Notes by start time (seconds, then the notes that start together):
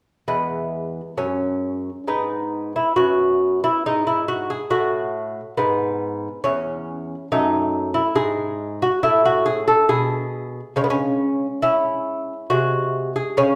0.28 E2 G#3 B3
1.17 F#2 C#4
2.07 G#2 B3 D#4
2.76 E4
2.96 F#2 B3 F#4
3.64 E4
3.86 G#2 D#4
4.07 E4
4.28 F#4
4.50 G#4
4.70 A2 F#4
5.57 G#2 B3
6.44 E2 C#4
7.32 F#2 A3 D#4
7.94 E4
8.15 G#2 G#3 G#4
8.82 F#4
9.03 A2 E4
9.25 F#4
9.46 G#4
9.68 A4
9.89 B2 G#4
10.76 C#3 G#3 C#4
10.84 B3
10.90 C#4
11.62 C#4 E4
12.50 C3 G#3 F#4
13.16 G#4
13.37 C#3 G#3 C#4